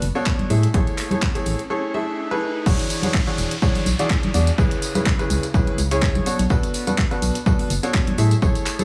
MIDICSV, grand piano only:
0, 0, Header, 1, 2, 480
1, 0, Start_track
1, 0, Tempo, 480000
1, 742, Time_signature, 4, 2, 24, 8
1, 8841, End_track
2, 0, Start_track
2, 0, Title_t, "Grand piano"
2, 0, Program_c, 0, 0
2, 152, Note_on_c, 0, 47, 100
2, 152, Note_on_c, 0, 62, 90
2, 152, Note_on_c, 0, 73, 104
2, 153, Note_on_c, 0, 66, 84
2, 153, Note_on_c, 0, 69, 91
2, 475, Note_off_c, 0, 47, 0
2, 476, Note_off_c, 0, 62, 0
2, 476, Note_off_c, 0, 66, 0
2, 476, Note_off_c, 0, 69, 0
2, 476, Note_off_c, 0, 73, 0
2, 501, Note_on_c, 0, 68, 85
2, 501, Note_on_c, 0, 69, 81
2, 502, Note_on_c, 0, 57, 92
2, 502, Note_on_c, 0, 64, 85
2, 502, Note_on_c, 0, 76, 97
2, 660, Note_off_c, 0, 57, 0
2, 660, Note_off_c, 0, 64, 0
2, 660, Note_off_c, 0, 68, 0
2, 660, Note_off_c, 0, 69, 0
2, 660, Note_off_c, 0, 76, 0
2, 741, Note_on_c, 0, 57, 90
2, 741, Note_on_c, 0, 68, 78
2, 741, Note_on_c, 0, 69, 81
2, 741, Note_on_c, 0, 73, 93
2, 742, Note_on_c, 0, 64, 79
2, 1081, Note_off_c, 0, 57, 0
2, 1081, Note_off_c, 0, 64, 0
2, 1081, Note_off_c, 0, 68, 0
2, 1081, Note_off_c, 0, 69, 0
2, 1081, Note_off_c, 0, 73, 0
2, 1112, Note_on_c, 0, 57, 71
2, 1112, Note_on_c, 0, 64, 66
2, 1112, Note_on_c, 0, 68, 66
2, 1112, Note_on_c, 0, 69, 66
2, 1112, Note_on_c, 0, 73, 78
2, 1255, Note_off_c, 0, 57, 0
2, 1255, Note_off_c, 0, 64, 0
2, 1255, Note_off_c, 0, 68, 0
2, 1255, Note_off_c, 0, 69, 0
2, 1255, Note_off_c, 0, 73, 0
2, 1351, Note_on_c, 0, 57, 90
2, 1351, Note_on_c, 0, 64, 84
2, 1351, Note_on_c, 0, 68, 79
2, 1351, Note_on_c, 0, 69, 78
2, 1351, Note_on_c, 0, 73, 94
2, 1592, Note_off_c, 0, 57, 0
2, 1592, Note_off_c, 0, 64, 0
2, 1592, Note_off_c, 0, 68, 0
2, 1592, Note_off_c, 0, 69, 0
2, 1592, Note_off_c, 0, 73, 0
2, 1701, Note_on_c, 0, 57, 92
2, 1701, Note_on_c, 0, 64, 92
2, 1701, Note_on_c, 0, 68, 87
2, 1701, Note_on_c, 0, 69, 88
2, 1702, Note_on_c, 0, 73, 103
2, 1920, Note_off_c, 0, 57, 0
2, 1920, Note_off_c, 0, 64, 0
2, 1920, Note_off_c, 0, 68, 0
2, 1920, Note_off_c, 0, 69, 0
2, 1920, Note_off_c, 0, 73, 0
2, 1941, Note_on_c, 0, 57, 93
2, 1942, Note_on_c, 0, 64, 82
2, 1942, Note_on_c, 0, 68, 80
2, 1942, Note_on_c, 0, 69, 85
2, 1942, Note_on_c, 0, 76, 101
2, 2281, Note_off_c, 0, 57, 0
2, 2281, Note_off_c, 0, 64, 0
2, 2281, Note_off_c, 0, 68, 0
2, 2281, Note_off_c, 0, 69, 0
2, 2281, Note_off_c, 0, 76, 0
2, 2312, Note_on_c, 0, 57, 88
2, 2312, Note_on_c, 0, 64, 83
2, 2312, Note_on_c, 0, 68, 83
2, 2312, Note_on_c, 0, 69, 81
2, 2312, Note_on_c, 0, 71, 106
2, 2635, Note_off_c, 0, 57, 0
2, 2635, Note_off_c, 0, 64, 0
2, 2635, Note_off_c, 0, 68, 0
2, 2635, Note_off_c, 0, 69, 0
2, 2636, Note_off_c, 0, 71, 0
2, 2661, Note_on_c, 0, 52, 84
2, 2661, Note_on_c, 0, 62, 77
2, 2661, Note_on_c, 0, 66, 81
2, 2661, Note_on_c, 0, 68, 82
2, 2661, Note_on_c, 0, 73, 100
2, 3001, Note_off_c, 0, 52, 0
2, 3001, Note_off_c, 0, 62, 0
2, 3001, Note_off_c, 0, 66, 0
2, 3001, Note_off_c, 0, 68, 0
2, 3001, Note_off_c, 0, 73, 0
2, 3032, Note_on_c, 0, 52, 74
2, 3032, Note_on_c, 0, 62, 66
2, 3032, Note_on_c, 0, 66, 66
2, 3032, Note_on_c, 0, 73, 82
2, 3033, Note_on_c, 0, 68, 67
2, 3175, Note_off_c, 0, 52, 0
2, 3175, Note_off_c, 0, 62, 0
2, 3175, Note_off_c, 0, 66, 0
2, 3175, Note_off_c, 0, 68, 0
2, 3175, Note_off_c, 0, 73, 0
2, 3271, Note_on_c, 0, 52, 91
2, 3272, Note_on_c, 0, 62, 87
2, 3272, Note_on_c, 0, 66, 82
2, 3272, Note_on_c, 0, 68, 87
2, 3272, Note_on_c, 0, 73, 94
2, 3512, Note_off_c, 0, 52, 0
2, 3513, Note_off_c, 0, 62, 0
2, 3513, Note_off_c, 0, 66, 0
2, 3513, Note_off_c, 0, 68, 0
2, 3513, Note_off_c, 0, 73, 0
2, 3622, Note_on_c, 0, 52, 98
2, 3622, Note_on_c, 0, 62, 88
2, 3622, Note_on_c, 0, 66, 88
2, 3622, Note_on_c, 0, 73, 106
2, 3623, Note_on_c, 0, 68, 86
2, 3863, Note_off_c, 0, 52, 0
2, 3863, Note_off_c, 0, 62, 0
2, 3863, Note_off_c, 0, 66, 0
2, 3863, Note_off_c, 0, 68, 0
2, 3863, Note_off_c, 0, 73, 0
2, 3993, Note_on_c, 0, 52, 97
2, 3993, Note_on_c, 0, 62, 88
2, 3993, Note_on_c, 0, 66, 89
2, 3993, Note_on_c, 0, 68, 94
2, 3993, Note_on_c, 0, 74, 108
2, 4316, Note_off_c, 0, 52, 0
2, 4316, Note_off_c, 0, 62, 0
2, 4316, Note_off_c, 0, 66, 0
2, 4316, Note_off_c, 0, 68, 0
2, 4316, Note_off_c, 0, 74, 0
2, 4341, Note_on_c, 0, 74, 100
2, 4342, Note_on_c, 0, 62, 89
2, 4342, Note_on_c, 0, 66, 83
2, 4342, Note_on_c, 0, 68, 80
2, 4500, Note_off_c, 0, 62, 0
2, 4500, Note_off_c, 0, 66, 0
2, 4500, Note_off_c, 0, 68, 0
2, 4500, Note_off_c, 0, 74, 0
2, 4580, Note_on_c, 0, 49, 84
2, 4580, Note_on_c, 0, 61, 80
2, 4580, Note_on_c, 0, 68, 83
2, 4581, Note_on_c, 0, 64, 86
2, 4581, Note_on_c, 0, 71, 100
2, 4920, Note_off_c, 0, 49, 0
2, 4920, Note_off_c, 0, 61, 0
2, 4920, Note_off_c, 0, 64, 0
2, 4920, Note_off_c, 0, 68, 0
2, 4920, Note_off_c, 0, 71, 0
2, 4952, Note_on_c, 0, 49, 71
2, 4952, Note_on_c, 0, 61, 68
2, 4952, Note_on_c, 0, 64, 67
2, 4953, Note_on_c, 0, 68, 68
2, 4953, Note_on_c, 0, 71, 77
2, 5095, Note_off_c, 0, 49, 0
2, 5095, Note_off_c, 0, 61, 0
2, 5095, Note_off_c, 0, 64, 0
2, 5095, Note_off_c, 0, 68, 0
2, 5095, Note_off_c, 0, 71, 0
2, 5192, Note_on_c, 0, 49, 96
2, 5192, Note_on_c, 0, 61, 80
2, 5192, Note_on_c, 0, 64, 83
2, 5192, Note_on_c, 0, 68, 82
2, 5192, Note_on_c, 0, 71, 100
2, 5432, Note_off_c, 0, 68, 0
2, 5433, Note_off_c, 0, 49, 0
2, 5433, Note_off_c, 0, 61, 0
2, 5433, Note_off_c, 0, 64, 0
2, 5433, Note_off_c, 0, 71, 0
2, 5542, Note_on_c, 0, 61, 87
2, 5542, Note_on_c, 0, 64, 91
2, 5542, Note_on_c, 0, 68, 89
2, 5542, Note_on_c, 0, 71, 101
2, 5543, Note_on_c, 0, 49, 96
2, 5783, Note_off_c, 0, 49, 0
2, 5783, Note_off_c, 0, 61, 0
2, 5783, Note_off_c, 0, 64, 0
2, 5783, Note_off_c, 0, 68, 0
2, 5783, Note_off_c, 0, 71, 0
2, 5913, Note_on_c, 0, 49, 97
2, 5913, Note_on_c, 0, 61, 90
2, 5913, Note_on_c, 0, 64, 88
2, 5913, Note_on_c, 0, 68, 93
2, 5913, Note_on_c, 0, 73, 110
2, 6236, Note_off_c, 0, 49, 0
2, 6236, Note_off_c, 0, 61, 0
2, 6236, Note_off_c, 0, 64, 0
2, 6236, Note_off_c, 0, 68, 0
2, 6236, Note_off_c, 0, 73, 0
2, 6262, Note_on_c, 0, 47, 91
2, 6262, Note_on_c, 0, 62, 83
2, 6262, Note_on_c, 0, 66, 81
2, 6262, Note_on_c, 0, 69, 83
2, 6262, Note_on_c, 0, 73, 103
2, 6420, Note_off_c, 0, 47, 0
2, 6420, Note_off_c, 0, 62, 0
2, 6420, Note_off_c, 0, 66, 0
2, 6420, Note_off_c, 0, 69, 0
2, 6420, Note_off_c, 0, 73, 0
2, 6501, Note_on_c, 0, 62, 82
2, 6501, Note_on_c, 0, 69, 86
2, 6501, Note_on_c, 0, 71, 97
2, 6502, Note_on_c, 0, 47, 88
2, 6502, Note_on_c, 0, 66, 82
2, 6841, Note_off_c, 0, 47, 0
2, 6841, Note_off_c, 0, 62, 0
2, 6841, Note_off_c, 0, 66, 0
2, 6841, Note_off_c, 0, 69, 0
2, 6841, Note_off_c, 0, 71, 0
2, 6871, Note_on_c, 0, 47, 73
2, 6871, Note_on_c, 0, 66, 68
2, 6871, Note_on_c, 0, 69, 67
2, 6872, Note_on_c, 0, 62, 70
2, 6872, Note_on_c, 0, 71, 83
2, 7014, Note_off_c, 0, 47, 0
2, 7014, Note_off_c, 0, 62, 0
2, 7014, Note_off_c, 0, 66, 0
2, 7014, Note_off_c, 0, 69, 0
2, 7014, Note_off_c, 0, 71, 0
2, 7111, Note_on_c, 0, 47, 94
2, 7111, Note_on_c, 0, 62, 83
2, 7111, Note_on_c, 0, 66, 85
2, 7111, Note_on_c, 0, 69, 82
2, 7111, Note_on_c, 0, 71, 102
2, 7352, Note_off_c, 0, 47, 0
2, 7352, Note_off_c, 0, 62, 0
2, 7352, Note_off_c, 0, 66, 0
2, 7352, Note_off_c, 0, 69, 0
2, 7352, Note_off_c, 0, 71, 0
2, 7461, Note_on_c, 0, 47, 95
2, 7461, Note_on_c, 0, 62, 90
2, 7461, Note_on_c, 0, 66, 88
2, 7461, Note_on_c, 0, 69, 91
2, 7461, Note_on_c, 0, 71, 101
2, 7702, Note_off_c, 0, 47, 0
2, 7702, Note_off_c, 0, 62, 0
2, 7702, Note_off_c, 0, 66, 0
2, 7702, Note_off_c, 0, 69, 0
2, 7702, Note_off_c, 0, 71, 0
2, 7832, Note_on_c, 0, 47, 95
2, 7832, Note_on_c, 0, 62, 91
2, 7832, Note_on_c, 0, 66, 87
2, 7832, Note_on_c, 0, 69, 89
2, 7832, Note_on_c, 0, 73, 102
2, 8155, Note_off_c, 0, 47, 0
2, 8155, Note_off_c, 0, 62, 0
2, 8155, Note_off_c, 0, 66, 0
2, 8155, Note_off_c, 0, 69, 0
2, 8155, Note_off_c, 0, 73, 0
2, 8181, Note_on_c, 0, 57, 93
2, 8181, Note_on_c, 0, 68, 81
2, 8181, Note_on_c, 0, 69, 81
2, 8181, Note_on_c, 0, 76, 103
2, 8182, Note_on_c, 0, 64, 88
2, 8340, Note_off_c, 0, 57, 0
2, 8340, Note_off_c, 0, 64, 0
2, 8340, Note_off_c, 0, 68, 0
2, 8340, Note_off_c, 0, 69, 0
2, 8340, Note_off_c, 0, 76, 0
2, 8420, Note_on_c, 0, 68, 79
2, 8421, Note_on_c, 0, 57, 87
2, 8421, Note_on_c, 0, 64, 80
2, 8421, Note_on_c, 0, 69, 80
2, 8421, Note_on_c, 0, 73, 98
2, 8760, Note_off_c, 0, 68, 0
2, 8760, Note_off_c, 0, 69, 0
2, 8760, Note_off_c, 0, 73, 0
2, 8761, Note_off_c, 0, 57, 0
2, 8761, Note_off_c, 0, 64, 0
2, 8791, Note_on_c, 0, 64, 67
2, 8792, Note_on_c, 0, 57, 69
2, 8792, Note_on_c, 0, 68, 67
2, 8792, Note_on_c, 0, 69, 71
2, 8792, Note_on_c, 0, 73, 81
2, 8841, Note_off_c, 0, 57, 0
2, 8841, Note_off_c, 0, 64, 0
2, 8841, Note_off_c, 0, 68, 0
2, 8841, Note_off_c, 0, 69, 0
2, 8841, Note_off_c, 0, 73, 0
2, 8841, End_track
0, 0, End_of_file